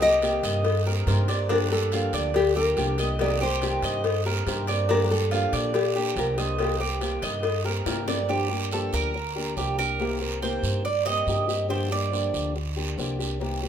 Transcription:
Already playing: C2
0.01 A#3 C4 G4 D#5
0.22 C3 D#3 A#3 C4 G4, cowbell, short guiro
0.43 G2 D#5, cowbell, short guiro
0.65 muted steel-string acoustic guitar stroke, cowbell, long guiro
0.86 A#3 C4 G4 A#4
1.06 G2 C3 D#3 A#3 C4 G4 C5, cowbell, short guiro
1.28 A#3 C4 G4 D5, cowbell, short guiro
1.49 D3 F3 A#3 D4 G4 A#4, cowbell, long guiro
1.71 A#3 D4 G4 A4
1.92 D3 F3 A#3 D4 F4 G4, cowbell, short guiro
2.13 D2 D5, cowbell, short guiro
2.34 G4, muted steel-string acoustic guitar stroke, cowbell, long guiro
2.56 A#3 D4 G4 A#4
2.77 C2 D3 F3 A#3 D4 G4, cowbell, short guiro
2.98 A#3 D4 G4 D#5, cowbell, short guiro
3.19 C3 D#3 A#3 C4 G4 D5, cowbell, long guiro
3.41 A#3 C4 G4 C5
3.61 C3 D#3 A#3 C4 G4, cowbell, short guiro
3.82 G2 D#5, cowbell, short guiro
4.04 muted steel-string acoustic guitar stroke, cowbell, long guiro
4.25 A#3 C4 G4 A#4
4.46 G2 C3 D#3 A#3 C4 G4 C5, cowbell, short guiro
4.67 A#3 C4 G4 D5, cowbell, short guiro
4.89 D3 F3 A#3 D4 G4 A#4, cowbell, long guiro
5.04 A#4
5.11 A#3 D4 G4 A4
5.31 D3 F3 A#3 D4 F4 G4, cowbell, short guiro
5.53 A#2 D5, cowbell, short guiro
5.74 G4, muted steel-string acoustic guitar stroke, cowbell, long guiro
5.95 A#3 D4 G4
6.16 C2 D3 F3 A#3 D4 G4 A#4, cowbell, short guiro
6.37 A#3 D4 G4 C5 D#5, cowbell, short guiro
6.59 C3 D#3 A#3 C4 G4, cowbell, long guiro
6.80 A#3 C4 G4
7.00 C3 D#3 A#3 C4 G4, cowbell, short guiro
7.22 G2 D#5, cowbell, short guiro
7.43 muted steel-string acoustic guitar stroke, cowbell, long guiro
7.64 A#3 C4 G4 A#4
7.86 G2 C3 D#3 A#3 C4 G4, cowbell, high bongo, short guiro
8.07 A#3 C4 G4 D5, cowbell, low bongo, short guiro
8.28 D3 F3 A#3 D4 G4, long guiro
8.51 A#3 D4 G4
8.71 D3 F3 A#3 D4 G4 A4, short guiro
8.93 D2 A#4, short guiro
9.14 muted steel-string acoustic guitar stroke, long guiro
9.36 A#3 D4 G4
9.56 C2 D3 F3 A#3 D4 G4, short guiro
9.78 A#3 D4 G4 A#4, short guiro
9.99 C3 D#3 A#3 C4 G4, long guiro
10.21 A#3 C4 G4
10.42 C3 D#3 A#3 C4 G4 C5, short guiro
10.63 G2, short guiro
10.85 D5, muted steel-string acoustic guitar stroke, long guiro
11.06 A#3 C4 G4 D#5
11.27 G2 C3 D#3 A#3 C4 G4, short guiro
11.48 A#3 C4 G4, short guiro
11.68 D3 F3 A#3 D4 G4 C5, long guiro
11.90 A#3 D4 G4 D5
12.11 D3 F3 A#3 D4 G4, short guiro
12.34 D2, short guiro
12.56 muted steel-string acoustic guitar stroke, long guiro
12.76 A#3 D4 G4
12.98 C2 D3 F3 A#3 D4 G4, short guiro
13.19 A#3 D4 G4, short guiro
13.40 C3 D#3 A#3 C4 G4, long guiro
13.63 A#3 C4 G4

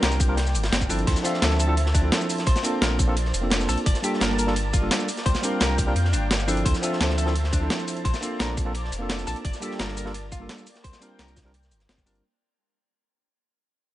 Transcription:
Already playing: G3 A#3 C4 D4 F4 A#4 D5 G5
0.02 C2 A#4, snare, closed hi-hat, ride
0.12 closed hi-hat, shaker
0.20 kick, closed hi-hat, ride, shaker
0.28 G3 C4 D4 F4 A#4
0.37 snare, closed hi-hat, ride
0.46 snare, shaker
0.54 G1, closed hi-hat, ride, shaker
0.63 snare, closed hi-hat, ride
0.72 G1 C4, snare, closed hi-hat
0.81 kick, ride, shaker
0.89 G1 F3 C4 D4 E4 A4, open hi-hat, ride, shaker
0.99 closed hi-hat
1.07 D2 C5 E5 A5, kick, closed hi-hat, crash, ride
1.16 snare, closed hi-hat, shaker
1.23 F3 C4 D4 F4 A4 E5, closed hi-hat, ride, shaker
1.34 snare
1.42 D2 A4, snare, closed hi-hat, ride
1.50 snare
1.59 A4, closed hi-hat, ride, shaker
1.67 F3 C4 D4 E4 A4
1.77 closed hi-hat, ride
1.86 snare
1.94 D4, kick, closed hi-hat, ride, shaker
2.02 F3 C4 D4 E4 A4
2.12 snare, closed hi-hat, ride
2.21 shaker
2.30 open hi-hat, ride, shaker
2.38 snare, closed hi-hat
2.46 A#1 C5 D5, kick, closed hi-hat, ride
2.56 snare, closed hi-hat, shaker
2.63 A#3 C4 D4 F4 A4, closed hi-hat, ride, shaker
2.82 A#1 A#4, snare, closed hi-hat, ride
2.99 kick, closed hi-hat, ride, shaker
3.07 A#3 C4 D4 F4 A4
3.17 closed hi-hat, ride
3.25 snare
3.34 F1, closed hi-hat, ride, shaker
3.41 A#3 C4 D4 F4 A4
3.50 snare, closed hi-hat, ride
3.60 snare, shaker
3.68 A#1 A4, open hi-hat, ride, shaker
3.78 closed hi-hat
3.86 G1 A#3 D5 A5, kick, closed hi-hat, ride
3.95 snare, closed hi-hat, shaker
4.02 G3 A#3 D4 F4 G4 A4, closed hi-hat, ride, shaker
4.13 snare
4.21 G1 A#4, snare, closed hi-hat, ride
4.30 snare
4.39 A#4, closed hi-hat, ride, shaker
4.47 G3 A#3 D4 F4 A4, snare
4.56 closed hi-hat, ride
4.73 F4, kick, closed hi-hat, ride, shaker
4.81 G3 A#3 D4 F4 A4
4.91 snare, closed hi-hat, ride
5.00 shaker
5.08 F5 G5, open hi-hat, ride, shaker
5.17 snare, closed hi-hat
5.26 C2 C5, kick, closed hi-hat, ride
5.35 snare, closed hi-hat, shaker
5.42 G3 C4 D4 F4 A#4, closed hi-hat, ride, shaker
5.60 C2 A#4, snare, closed hi-hat, ride
5.78 kick, closed hi-hat, ride, shaker
5.86 G3 C4 D4 F4 A#4
5.96 F2, closed hi-hat, ride
6.05 snare
6.13 G1 D4, closed hi-hat, ride, shaker
6.31 snare, closed hi-hat, ride
6.39 snare, shaker
6.47 F3 C4 D4 E4 A4, open hi-hat, ride, shaker
6.57 closed hi-hat
6.65 D2 C5 E5 A5, kick, closed hi-hat, ride
6.74 snare, closed hi-hat, shaker
6.82 F3 C4 D4 F4 A4 E5, closed hi-hat, ride, shaker
6.93 snare
7.00 D2 A4, snare, closed hi-hat, ride
7.10 snare
7.18 A4, closed hi-hat, ride, shaker
7.26 F3 C4 D4 E4 A4, snare
7.35 closed hi-hat, ride
7.44 snare
7.53 D4, kick, closed hi-hat, ride, shaker
7.60 F3 C4 D4 E4 A4
7.70 snare, closed hi-hat, ride
7.79 shaker
7.87 open hi-hat, ride, shaker
7.97 closed hi-hat
8.05 A#1 C5 D5, kick, closed hi-hat, ride
8.14 snare, closed hi-hat, shaker
8.21 A#3 C4 D4 F4 A4, closed hi-hat, ride, shaker
8.39 A#1 A#4, snare, closed hi-hat, ride
8.57 kick, closed hi-hat, ride, shaker
8.65 A#3 C4 D4 F4 A4
8.74 closed hi-hat, ride
8.85 snare
8.92 F1, closed hi-hat, ride, shaker
8.99 A#3 C4 D4 F4 A4
9.09 snare, closed hi-hat, ride
9.19 snare, shaker
9.27 A#1 A4, open hi-hat, ride, shaker
9.36 closed hi-hat
9.45 G1 A#3 D5, kick, closed hi-hat, ride
9.53 snare, closed hi-hat, shaker
9.60 G3 A#3 D4 F4 G4 A4, closed hi-hat, ride, shaker
9.71 snare
9.79 G1 A#4, snare, closed hi-hat, ride
9.88 snare
9.97 A#4, closed hi-hat, ride, shaker
10.05 G3 A#3 D4 F4 A4, snare
10.14 closed hi-hat, ride
10.32 F4, kick, closed hi-hat, ride, shaker
10.40 G3 A#3 D4 F4 A4
10.49 snare, closed hi-hat, ride
10.58 shaker
10.67 G5, open hi-hat, ride, shaker
10.75 snare, closed hi-hat
10.84 C2 C5, kick, closed hi-hat, ride
10.93 snare, closed hi-hat, shaker
11.00 G3 C4 D4 F4 A#4, closed hi-hat, ride, shaker
11.19 C2 A#4, snare, closed hi-hat, ride
11.28 closed hi-hat, shaker
11.37 kick, snare, closed hi-hat, ride, shaker
11.45 G3 C4 D4 F4 A#4, snare
11.54 closed hi-hat, ride
11.63 snare, shaker
11.71 G1, closed hi-hat, ride, shaker
11.80 snare, closed hi-hat
11.89 G1 C4, snare, closed hi-hat, ride
11.98 kick, snare, shaker
12.06 G1 G3 C4 D4 F4 A#4, open hi-hat, ride, shaker
12.15 closed hi-hat

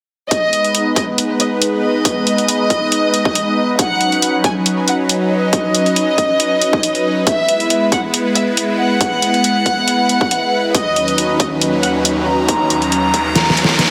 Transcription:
0.31 G#3 B3 D#4 B4 D#5, kick, closed hi-hat
0.53 closed hi-hat
0.64 closed hi-hat
0.75 closed hi-hat
0.96 D#5, kick, closed hi-hat
1.18 closed hi-hat
1.40 D#5, closed hi-hat
1.62 closed hi-hat
1.83 D#5
2.05 kick, closed hi-hat
2.27 closed hi-hat
2.38 closed hi-hat
2.48 closed hi-hat
2.70 kick, closed hi-hat
2.92 closed hi-hat
3.14 closed hi-hat
3.25 kick
3.35 closed hi-hat
3.79 F#3 C#4 B4 F#5, kick, closed hi-hat
4.01 closed hi-hat
4.12 closed hi-hat
4.22 closed hi-hat
4.44 G#5, kick, closed hi-hat
4.66 closed hi-hat
4.88 F#5, closed hi-hat
5.09 closed hi-hat
5.31 D#5
5.53 kick, closed hi-hat
5.75 closed hi-hat
5.86 closed hi-hat
5.96 closed hi-hat
6.18 kick, closed hi-hat
6.40 closed hi-hat
6.62 closed hi-hat
6.73 kick
6.83 closed hi-hat
6.95 closed hi-hat
7.27 G#3 B3 E4 E5, kick, closed hi-hat
7.49 closed hi-hat
7.60 closed hi-hat
7.70 closed hi-hat
7.92 F#5, kick, closed hi-hat
8.14 closed hi-hat
8.35 E5, closed hi-hat
8.57 closed hi-hat
8.79 F#5
9.01 kick, closed hi-hat
9.22 closed hi-hat
9.34 closed hi-hat
9.44 closed hi-hat
9.66 kick, closed hi-hat
9.88 closed hi-hat
10.09 closed hi-hat
10.21 kick
10.31 closed hi-hat
10.75 D#2 F#3 C#4 D#4 D#5, kick, closed hi-hat, riser
10.96 closed hi-hat
11.08 closed hi-hat
11.18 closed hi-hat
11.40 D#5, kick, closed hi-hat
11.61 closed hi-hat
11.83 F#5, closed hi-hat
12.05 closed hi-hat
12.27 A#5
12.48 kick, closed hi-hat
12.70 closed hi-hat
12.82 closed hi-hat
12.92 closed hi-hat
13.14 kick, closed hi-hat
13.36 snare, closed hi-hat
13.50 snare
13.57 closed hi-hat
13.64 snare
13.69 kick
13.79 snare, closed hi-hat

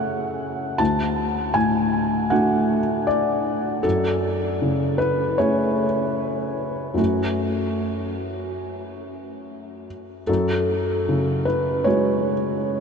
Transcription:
Already playing: F#2 C#3 A3 C#4 G#4 F#5
0.78 D2 A5
1.54 A2 G#5
2.30 A3 D4 F#4 F#5
3.07 D5
3.83 F#2 A4
4.62 C#3
4.98 B4
5.38 A3 C#4 G#4 C#5
6.94 F#2 A3 C#4 F#4
10.27 F#2 A4
11.09 C#3
11.45 B4
11.84 G#3 C#4 F#4 C#5

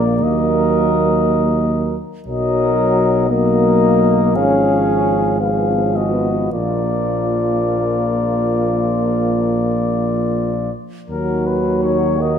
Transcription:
Already playing: A#1 A#3 D5
0.19 D#2 F#3 A#4 D#5
2.26 B1 F#3 A#4 D#5
3.29 F#3 A#3 A#4 D#5
4.35 G#1 F3 C#4 G#4 F5
5.41 F3 B3 G#4 F5
5.49 C#4
5.58 B3
5.67 C#4
5.74 B3
5.83 C#4
5.92 B3 D#5
5.97 C#4 F#4
6.07 B3
6.52 A#1 F3 A#3 F4 D5
11.09 D#2 D#3 F#3 F#4 A#4
11.46 B4
11.83 C#5
12.19 A#3 F#4 D#5

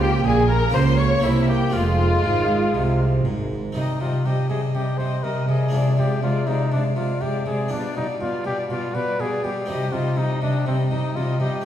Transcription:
Already playing: C#2 C#3 A#3 F4
0.00 G4 G5
0.23 A#1 A#2 G#4 G#5
0.48 A#4 A#5
0.70 C#3 A#3 F4 G4
0.74 C#2 C#3 A#3 C5 C6
0.98 C#5 C#6
1.19 A#3 C4 G4
1.23 C2 C3 A#3 E4 E5
1.48 G4 G5
1.69 F2 G#3 C4 F4
1.74 F1 F2 G#3 F4 F5
2.24 G#1 G#2
2.74 C2 C3
3.25 G#1 G#2
3.72 C3 G3 C4 D#4 D#5 G5
4.00 C3 G3 F4 D#5 G5
4.24 C3 G3 G4 D#5 G5
4.49 C3 G3 G#4 D#5 G5
4.74 C3 G3 G4 D#5 G5
4.98 C3 G3 C5 D#5 G5
5.23 C3 G3 A#4 D#5 G5
5.48 C3 G3 G#4 D#5 G5
5.68 G#3 D4 F4
5.73 C3 G#3 D5 F5
5.97 C3 G#3 G4 D5 F5
6.22 C3 G#3 F4 D5 F5
6.47 C3 G#3 D#4 D5 F5
6.72 C3 G#3 D4 D5 F5
6.96 C3 G#3 F4 D5 F5
7.21 C3 G#3 G4 D5 F5
7.46 C3 G#3 G#4 D5 F5
7.68 B2 G3 D4 F4 D5 F5
7.95 B2 G3 D#4 D5 F5
8.20 B2 G3 F4 D5 F5
8.44 B2 G3 G4 D5 F5
8.70 B2 G3 F4 D5 F5
8.95 B2 G3 B4 D5 F5
9.19 B2 G3 G#4 D5 F5
9.43 B2 G3 G4 D5 F5
9.66 C3 G3 C4 D#4 D#5
9.70 G5
9.93 C3 G3 F4 D#5 G5
10.16 C3 G3 D#4 D#5 G5
10.42 C3 G3 D4 D#5 G5
10.66 C3 G3 C4 D#5 G5
10.90 C3 G3 D#4 D#5 G5
11.15 C3 G3 F4 D#5 G5
11.39 C3 G3 G4 D#5 G5
11.62 C#4

